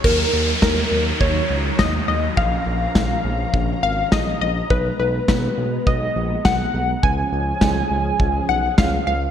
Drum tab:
CC |x-------|--------|--------|--------|
SD |--o---o-|--o---o-|--o---o-|--o---o-|
BD |o-o-o-o-|o-o-o-o-|o-o-o-o-|o-o-o-o-|